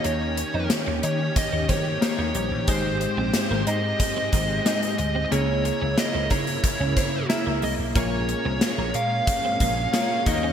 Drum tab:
HH |x-x-x-x-x-x-x-x-|x-x-x-x-x-x-xxx-|x-x-x-xxx-x-x-o-|x-x-x-x-x-x-x-x-|
SD |----o-------o---|----o-------o---|----o-------o---|----o-------o---|
BD |--------o-o-----|o-------o-o-----|------o-o-o-----|o-------o-o---o-|